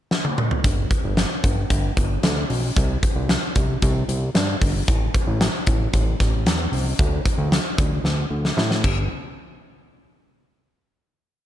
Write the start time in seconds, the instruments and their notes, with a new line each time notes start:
0.11 snare
0.25 high tom
0.38 mid tom
0.51 floor tom
0.64 analog synth bass G1, kick, closed hi-hat
0.91 kick, closed hi-hat
1.04 analog synth bass G1
1.17 snare, closed hi-hat
1.44 analog synth bass G1, kick, closed hi-hat
1.70 analog synth bass G1, kick, closed hi-hat
1.97 analog synth bass G1, kick, closed hi-hat
2.23 analog synth bass D2, snare, closed hi-hat
2.50 analog synth bass B1, open hi-hat
2.76 analog synth bass C2, kick, closed hi-hat
3.03 kick, closed hi-hat
3.16 analog synth bass C2
3.29 snare, closed hi-hat
3.55 analog synth bass C2, kick, closed hi-hat
3.82 analog synth bass C2, kick, closed hi-hat
4.08 analog synth bass C2, closed hi-hat
4.35 analog synth bass G2, snare, closed hi-hat
4.61 analog synth bass G1, kick, open hi-hat
4.88 analog synth bass A1, kick, closed hi-hat
5.14 kick, closed hi-hat
5.27 analog synth bass A1
5.41 snare, closed hi-hat
5.67 analog synth bass A1, kick, closed hi-hat
5.93 analog synth bass A1, kick, closed hi-hat
6.20 analog synth bass A1, kick, snare, closed hi-hat
6.46 analog synth bass E2, snare, closed hi-hat
6.72 analog synth bass C2, open hi-hat
6.99 analog synth bass D2, kick, closed hi-hat
7.26 kick, closed hi-hat
7.38 analog synth bass D2
7.52 snare, closed hi-hat
7.78 analog synth bass D2, kick, closed hi-hat
8.04 analog synth bass D2, snare
8.30 analog synth bass D2
8.45 snare
8.57 analog synth bass A2, snare
8.71 snare
8.84 analog synth bass G1, kick, crash